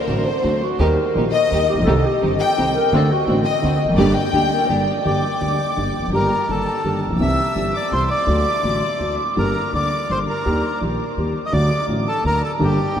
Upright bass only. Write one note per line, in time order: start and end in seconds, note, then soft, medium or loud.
0.07 0.23 A1 medium
0.44 0.59 D2 medium
0.79 0.95 D#2 medium
1.15 1.31 A#1 medium
1.51 1.66 D#2 medium
1.74 1.78 A1 medium
1.79 1.81 A#1 medium
1.79 1.86 B1 medium
1.86 2.02 C2 medium
2.22 2.37 G1 medium
2.58 2.73 C2 medium
2.92 3.07 D2 medium
3.27 3.42 A1 medium
3.63 3.77 D2 medium
3.85 3.88 E1 medium
3.85 3.93 F1 medium
3.93 3.96 F#1 medium
3.93 4.12 G1 medium
4.33 4.48 D2 medium
4.69 4.84 G1 medium
5.05 5.20 G1 medium
5.41 5.57 D2 soft
5.77 5.92 G1 soft
5.99 6.02 E1 soft
5.99 6.07 F1 soft
6.08 6.11 F#1 medium
6.08 6.27 G1 medium
6.48 6.64 G1 soft
6.84 7.00 G1 soft
7.07 7.11 A1 soft
7.11 7.15 A#1 soft
7.16 7.19 B1 medium
7.16 7.35 C2 medium
7.55 7.71 G1 medium
7.91 8.07 C2 soft
8.27 8.43 D2 medium
8.63 8.79 A1 soft
9.00 9.16 D2 soft
9.37 9.52 G1 medium
9.73 9.88 D2 medium
10.10 10.25 G1 soft
10.46 10.61 D#2 medium
10.81 10.96 A#1 soft
11.17 11.32 D#2 medium
11.52 11.68 D2 medium
11.88 12.03 A1 medium
12.24 12.39 D2 medium
12.60 12.75 G1 medium
12.96 13.00 D2 medium